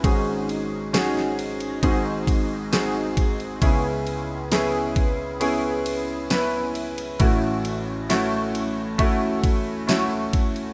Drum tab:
RD |x-x-x-xxx-x-x-xx|x-x-x-x-x-x-x-xx|x-x-x-x-x-x-x-xx|
SD |----oo------o---|----o-------o---|----o-------o---|
BD |o-------o-o---o-|o-----o---------|o-------o-o---o-|